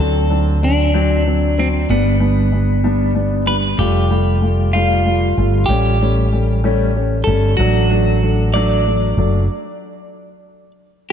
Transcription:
Already playing: fretless electric bass D2, clean electric guitar A4
0.00 grand piano F#3 C4 D4
0.30 grand piano F#3 C4 D4
0.62 grand piano F#3 C4 D4, clean electric guitar D4
0.94 grand piano F#3 C4 D4
1.26 grand piano F#3 C4 D4
1.58 grand piano F#3 C4 D4, clean electric guitar C4
1.89 fretless electric bass G1, grand piano G3 B3 D4, clean electric guitar B3
2.20 grand piano G3 B3 D4
2.52 grand piano G3 B3 D4
2.84 grand piano G3 B3 D4
3.15 grand piano G3 B3 D4
3.46 grand piano G3 B3 D4, clean electric guitar B4
3.78 fretless electric bass F1, grand piano G3 A3 F4, clean electric guitar G4
4.10 grand piano G3 A3 F4
4.42 grand piano G3 A3 F4
4.73 grand piano G3 A3 F4, clean electric guitar F4
5.05 grand piano G3 A3 F4
5.37 fretless electric bass G1, grand piano G3 A3 F4
5.66 fretless electric bass A1, grand piano G3 A3 C#4, clean electric guitar G4
6.01 grand piano G3 A3 C#4
6.32 grand piano G3 A3 C#4
6.64 grand piano G3 A3 C#4
6.96 grand piano A3 C#4
7.24 fretless electric bass G1, grand piano G3 A3 C#4, clean electric guitar A4
7.57 fretless electric bass A1, grand piano F#3 A3 D4, clean electric guitar F#4
7.90 grand piano F#3 A3 D4
8.23 grand piano F#3 A3 D4
8.54 grand piano F#3 A3 D4, clean electric guitar D5
8.87 grand piano F#3 A3 D4
9.16 fretless electric bass F#1, grand piano F#3 A3 D4

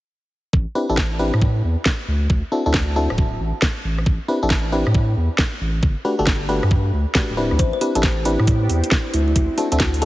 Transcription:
0.53 sub bass A1, kick
0.75 fm electric piano C4 D4 E4 G4 B4
0.89 sub bass A1, fm electric piano C4 D4 E4 G4 A4
0.97 kick, snare
1.19 fm electric piano C4 D4 E4 G4 B4
1.34 sub bass A2, cross-stick
1.42 kick
1.64 sub bass E2
1.86 kick, snare
2.08 sub bass D2
2.30 sub bass D2, kick
2.52 fm electric piano C4 D4 E4 F#4 A4
2.66 sub bass D2, fm electric piano C4 D4 E4 F#4 A4
2.74 kick, snare
2.96 fm electric piano C4 D4 E4 F#4 A4
3.10 sub bass D1, cross-stick
3.18 kick
3.40 sub bass A1
3.62 kick, snare
3.84 sub bass A1
3.98 cross-stick
4.06 sub bass A1, kick
4.28 fm electric piano C4 D4 E4 G4 B4
4.42 sub bass A1, fm electric piano C4 D4 E4 G4 A4
4.50 kick, snare
4.72 fm electric piano C4 D4 E4 G4 B4
4.86 sub bass A2, cross-stick
4.95 kick
5.17 sub bass E2
5.38 kick, snare
5.61 sub bass A1
5.83 sub bass G1, kick
6.05 fm electric piano A3 D4 F#4 G4 B4
6.19 sub bass G1, fm electric piano A3 D4 F#4 G4 A4
6.27 kick, snare
6.49 fm electric piano A3 D4 F#4 G4 B4
6.63 sub bass G2, cross-stick
6.71 kick
6.93 sub bass D2
7.15 fm electric piano A3 D4 F#4 G4 B4, kick, snare
7.29 sub bass D1
7.37 sub bass D1, fm electric piano C4 D4 E4 G4 B4
7.51 sub bass D2, cross-stick
7.59 sub bass A1, string machine B3 C4 D4 G4, kalimba C5, kick, closed hi-hat
7.73 kalimba C5
7.81 fm electric piano C4 D4 E4 G4 B4, kalimba G4, open hi-hat
7.95 sub bass A1, fm electric piano C4 D4 E4 G4 A4, closed hi-hat
8.03 kick, snare, closed hi-hat
8.25 fm electric piano C4 D4 E4 G4 B4, kalimba E4, open hi-hat
8.39 sub bass A2, cross-stick
8.47 kick, closed hi-hat
8.69 sub bass E2, open hi-hat
8.84 closed hi-hat
8.91 kick, snare
9.14 sub bass D2, string machine A3 E4 F#4, kalimba E4, open hi-hat
9.28 kalimba E4
9.36 sub bass D2, kalimba E4, kick, closed hi-hat
9.58 fm electric piano C4 D4 E4 F#4 A4, kalimba F#4, open hi-hat
9.72 sub bass D2, fm electric piano C4 D4 E4 F#4 A4, kalimba F#4, closed hi-hat
9.80 kick, snare, closed hi-hat
9.94 open hi-hat
10.02 fm electric piano C4 D4 E4 F#4 A4, kalimba A4, open hi-hat

